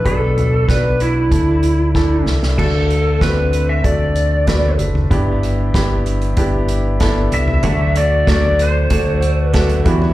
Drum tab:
CC |----------------|x---------------|----------------|----------------|
HH |x-x-x-x-x-x-----|--x-x-x-x-x-x-x-|x-x-x-xxx-x-x-x-|x-x-x-x-x-x-xxx-|
SD |----o-------o-oo|----o-------o---|----o-------o---|----o-------o---|
FT |--o-------------|---------------o|---------------o|---------------o|
BD |o---o---o---o---|o---o---o---o---|o---o---o---o---|o---o---o---o-o-|